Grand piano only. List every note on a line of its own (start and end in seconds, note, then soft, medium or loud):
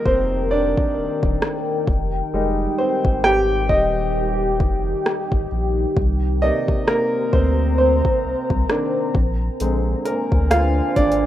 0.00 1.84 F3 medium
0.00 1.84 G3 soft
0.00 1.90 A#3 medium
0.00 0.08 C4 medium
0.00 1.89 D#4 medium
0.00 1.89 F4 medium
0.00 1.89 A#4 medium
0.00 1.90 D#5 medium
0.05 0.49 C4 medium
0.05 0.52 C5 medium
0.51 1.85 D4 medium
0.51 1.83 D5 medium
2.34 2.97 G3 medium
2.34 2.97 G#3 medium
2.34 2.97 D#4 medium
2.78 3.22 C4 medium
2.78 3.21 C5 medium
3.24 3.67 G4 medium
3.24 3.71 G5 loud
3.69 5.48 D#4 medium
3.69 5.47 D#5 medium
6.42 7.75 C3 medium
6.42 6.88 A#3 medium
6.42 6.85 D#4 medium
6.42 7.75 D5 medium
6.42 6.89 D#5 loud
6.87 7.31 A#3 medium
6.87 7.34 A#4 medium
7.33 7.45 C4 medium
7.33 7.43 C5 medium
7.78 9.12 C4 medium
7.78 9.11 C5 medium
8.70 9.11 D#3 soft
8.70 9.11 A#3 soft
8.70 9.12 D4 medium
9.60 10.93 D3 medium
9.60 10.93 G#3 soft
9.60 10.93 C4 medium
10.05 10.18 A#3 medium
10.05 10.16 A#4 medium
10.51 10.94 F4 medium
10.51 10.98 F5 loud
10.96 11.26 D4 medium
10.96 11.26 D5 medium